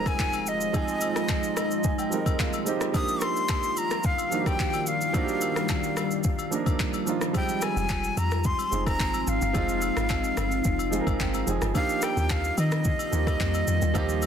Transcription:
Already playing: grand piano F3 G#3 C4 D#4 G4 A#4, ambient pad F3 G#3 D#4 F4, impact
0.06 flute G#5, kick, cross-stick, high agogo, shaker
0.19 kick, clap, shaker
0.33 high agogo, shaker
0.46 flute D#5, shaker
0.61 shaker
0.73 grand piano F3 G#3 C4 D#4 G#4, kick, high agogo, shaker
0.88 shaker
1.01 high agogo, shaker
1.16 cross-stick, shaker
1.28 kick, clap, high agogo, low woodblock, shaker
1.43 shaker
1.57 grand piano A#5, cross-stick, high agogo, shaker
1.71 shaker
1.84 grand piano G#5, kick, shaker
1.98 grand piano G5, high agogo, shaker
2.10 grand piano F3 G3 C4 D#4 A#4, shaker
2.17 grand piano G#3
2.26 kick, high agogo, shaker
2.39 grand piano F5, kick, clap, shaker
2.53 high agogo, shaker
2.65 grand piano F3 G#3 C4 D#4 G4 D#5, shaker
2.81 cross-stick, shaker
2.93 ambient pad D#3 G3 F4 D5, grand piano F3 A#3 D4 D#4 G4, flute D#6, kick, high agogo, shaker
3.08 shaker
3.21 flute C6, cross-stick, high agogo, shaker
3.36 shaker
3.48 kick, clap, high agogo, low woodblock, shaker
3.63 shaker
3.77 flute A#5, high agogo, shaker
3.91 cross-stick, shaker
4.03 flute F5, kick, shaker
4.18 high agogo, shaker
4.30 grand piano F3 A#3 D4 D#4 F#4, shaker
4.40 grand piano G4
4.46 flute G5, kick, cross-stick, high agogo, shaker
4.59 kick, clap, shaker
4.73 high agogo, shaker
4.87 flute F5, shaker
5.01 shaker
5.13 grand piano F3 A#3 D4 D#4 F#4, ambient pad F4, kick, high agogo, shaker
5.23 grand piano G4
5.28 shaker
5.41 high agogo, shaker
5.56 cross-stick, shaker
5.69 kick, clap, high agogo, low woodblock, shaker
5.83 shaker
5.97 cross-stick, high agogo, shaker
6.11 shaker
6.24 kick, shaker
6.39 high agogo, shaker
6.51 grand piano F3 A#3 D4 D#4 A#4, shaker
6.66 kick, high agogo, shaker
6.80 kick, clap, shaker
6.94 high agogo, shaker
7.06 grand piano F3 A#3 D4 D#4 F4, shaker
7.21 cross-stick, shaker
7.33 grand piano F3 G3 G#3 C4 D#4, ambient pad F3 C4 D#4, flute G5, kick, high agogo, shaker
7.49 shaker
7.62 flute G#5, cross-stick, high agogo, shaker
7.77 log drum bass F1, shaker
7.89 kick, clap, high agogo, low woodblock, shaker
8.04 shaker
8.17 log drum bass F2, flute A#5, high agogo, shaker
8.31 cross-stick, shaker
8.44 flute C6, kick, shaker
8.59 high agogo, shaker
8.71 log drum bass F1, grand piano F3 G#3 C4 D#4 G#4, shaker
8.86 flute A#5, kick, cross-stick, high agogo, shaker
9.00 log drum bass G#1, kick, clap, shaker
9.14 high agogo, shaker
9.27 log drum bass G#1, flute F5, shaker
9.41 log drum bass G1, shaker
9.53 log drum bass F1, grand piano F3 G#3 C4 D#4 F4, kick, high agogo, shaker
9.69 shaker
9.82 high agogo, shaker
9.97 log drum bass G#1, cross-stick, shaker
10.09 kick, clap, high agogo, low woodblock, shaker
10.24 shaker
10.37 log drum bass G1, cross-stick, high agogo, shaker
10.52 shaker
10.64 log drum bass F1, kick, shaker
10.79 high agogo, shaker
10.91 grand piano F3 G#3 C4 D#4 G#4 D#5, shaker
11.01 grand piano A#4
11.07 log drum bass G#1, kick, high agogo, shaker
11.20 log drum bass G1, grand piano G5, kick, clap, shaker
11.34 grand piano A#5, high agogo, shaker
11.46 log drum bass F1, grand piano F3 G#3 C4 D#4 G#4, shaker
11.62 log drum bass G1, cross-stick, shaker
11.74 ambient pad D#3 G3 A#3 F4, grand piano F3 A#3 D4 D#4 G4, flute F5, kick, high agogo, shaker
11.89 shaker
12.02 flute G5, cross-stick, high agogo, shaker
12.17 log drum bass D#2, shaker
12.29 flute F5, kick, clap, high agogo, low woodblock, shaker
12.44 shaker
12.58 log drum bass D#3, flute D#5, high agogo, shaker
12.72 cross-stick, shaker
12.84 kick, shaker
12.99 high agogo, shaker
13.11 log drum bass D#2, grand piano F3 A#3 D#4 F4 G4, shaker
13.27 kick, cross-stick, high agogo, shaker
13.40 log drum bass F2, kick, clap, shaker
13.54 high agogo, shaker
13.68 log drum bass F2, shaker
13.82 log drum bass D#2, shaker
13.94 log drum bass D#2, grand piano F3 A#3 D#4 F4 G4, kick, high agogo, shaker
14.09 shaker
14.22 high agogo, shaker

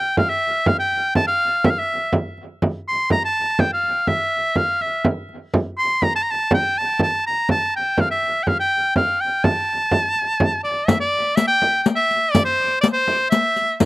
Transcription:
Already playing: shawm G5
0.17 shawm F5, frame drum
0.30 shawm E5
0.66 shawm F5, frame drum
0.79 shawm G5
0.92 frame drum
1.15 shawm A5, frame drum
1.27 shawm F5
1.64 shawm E5, frame drum
1.71 shawm F5
1.79 shawm E5
2.13 frame drum
2.38 frame drum
2.62 frame drum
2.88 shawm C6
3.10 shawm A#5, frame drum
3.25 shawm A5
3.59 shawm G5, frame drum
3.73 shawm F5
3.83 frame drum
4.07 shawm E5, frame drum
4.56 shawm F5, frame drum
4.81 shawm E5, frame drum
5.05 frame drum
5.29 frame drum
5.54 frame drum
5.78 shawm C6
6.02 shawm A#5, frame drum
6.16 shawm A5
6.23 shawm A#5
6.31 shawm A5
6.51 shawm G5, frame drum
6.76 shawm A5, frame drum
6.99 shawm A5, frame drum
7.27 shawm A#5
7.49 shawm A5, frame drum
7.76 shawm G5
7.98 shawm F5, frame drum
8.11 shawm E5
8.23 frame drum
8.43 shawm G5, frame drum
8.48 shawm F5
8.60 shawm G5
8.96 shawm F5, frame drum
9.21 shawm G5
9.44 shawm A5, frame drum
9.91 frame drum
10.16 frame drum
10.40 frame drum
10.64 shawm D5, frame drum
10.87 shawm E5, riq, frame drum
11.00 shawm D5
11.13 frame drum
11.36 shawm E5, riq, frame drum
11.48 shawm G5
11.62 frame drum
11.82 shawm G5, riq
11.95 shawm E5
12.11 riq
12.31 shawm D5, riq, frame drum
12.45 shawm C5
12.60 frame drum
12.81 shawm D5, riq, frame drum
12.93 shawm C5
13.08 frame drum
13.30 shawm E5, riq
13.56 riq
13.80 riq, frame drum

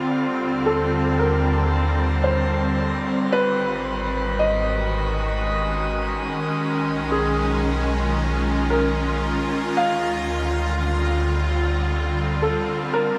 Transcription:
Already playing: ambient pad D3 G3 C4 F4
0.13 analog synth bass D#2
0.66 felt piano A4
1.19 felt piano A#4
2.24 felt piano C5
3.32 analog synth bass G#1, ambient pad D#3, felt piano B4
4.17 ambient pad G#3
4.33 ambient pad F#4
4.39 felt piano D#5
4.81 ambient pad C#4
6.57 analog synth bass B1
7.11 felt piano G#4
7.23 ambient pad F4
8.70 felt piano A#4
9.76 analog synth bass D2, ambient pad D3, felt piano F5
10.00 ambient pad G3
10.24 ambient pad C4
12.42 felt piano A4
12.93 felt piano A#4
12.98 analog synth bass D#2

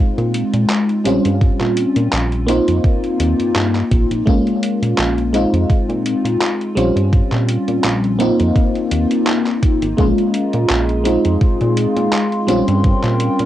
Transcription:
Already playing: fm electric piano G#3 C4 D#4 F4
0.00 analog synth bass A#2
0.18 analog synth bass A#2, closed hi-hat
0.34 closed hi-hat
0.54 analog synth bass A#2, closed hi-hat
0.70 clap, closed hi-hat
0.89 closed hi-hat
1.04 analog synth bass A#1, fm electric piano G3 C4 C#4 F4, closed hi-hat
1.25 analog synth bass G2, closed hi-hat
1.41 kick, closed hi-hat
1.61 analog synth bass A#2, clap, closed hi-hat
1.77 closed hi-hat
1.96 analog synth bass A#2, closed hi-hat
2.13 analog synth bass A#1, clap, closed hi-hat
2.32 closed hi-hat
2.46 fm electric piano A#3 C4 D#4 F4, closed hi-hat
2.68 analog synth bass F2, closed hi-hat
2.84 kick, closed hi-hat
3.04 closed hi-hat
3.20 analog synth bass D#2, closed hi-hat
3.40 closed hi-hat
3.55 analog synth bass G2, clap, closed hi-hat
3.75 clap, closed hi-hat
3.91 analog synth bass A#1, kick, closed hi-hat
4.11 analog synth bass A#1, closed hi-hat
4.26 analog synth bass A#1, fm electric piano G#3 A#3 C#4 F4, kick, closed hi-hat
4.47 closed hi-hat
4.63 closed hi-hat
4.82 analog synth bass A#2, closed hi-hat
4.98 analog synth bass A#1, clap, closed hi-hat
5.18 closed hi-hat
5.33 fm electric piano G#3 C4 D#4 F4, closed hi-hat
5.53 analog synth bass F2, closed hi-hat
5.70 kick, closed hi-hat
5.89 analog synth bass A#2, closed hi-hat
6.06 closed hi-hat
6.25 analog synth bass A#2, closed hi-hat
6.41 clap, closed hi-hat
6.61 closed hi-hat
6.75 analog synth bass A#1, fm electric piano G3 C4 C#4 F4, closed hi-hat
6.96 analog synth bass G2, closed hi-hat
7.13 kick, closed hi-hat
7.32 analog synth bass A#2, clap, closed hi-hat
7.48 closed hi-hat
7.68 analog synth bass A#2, closed hi-hat
7.84 analog synth bass A#1, clap, closed hi-hat
8.04 closed hi-hat
8.19 fm electric piano A#3 C4 D#4 F4, closed hi-hat
8.40 analog synth bass F2, closed hi-hat
8.56 kick, closed hi-hat
8.75 closed hi-hat
8.91 analog synth bass D#2, closed hi-hat
9.11 closed hi-hat
9.27 clap, closed hi-hat
9.46 clap, closed hi-hat
9.63 kick, closed hi-hat
9.82 analog synth bass G#1, closed hi-hat
9.97 analog synth bass A#1, fm electric piano G#3 A#3 C#4 F4, ambient pad G#4 D#5 A#5, kick, closed hi-hat
10.18 closed hi-hat
10.34 closed hi-hat
10.53 analog synth bass A#2, closed hi-hat
10.70 analog synth bass A#1, clap, closed hi-hat
10.89 closed hi-hat
11.04 fm electric piano G#3 C4 D#4 F4, ambient pad F5 C6, closed hi-hat
11.25 analog synth bass F2, closed hi-hat
11.41 kick, closed hi-hat
11.61 analog synth bass A#2, closed hi-hat
11.77 closed hi-hat
11.97 analog synth bass A#2, closed hi-hat
12.13 clap, closed hi-hat
12.32 closed hi-hat
12.47 analog synth bass A#1, fm electric piano G3 C4 C#4 F4, ambient pad A#4 G5, closed hi-hat
12.68 analog synth bass G2, closed hi-hat
12.84 kick, closed hi-hat
13.04 analog synth bass A#2, clap, closed hi-hat
13.20 closed hi-hat
13.39 analog synth bass A#2, closed hi-hat

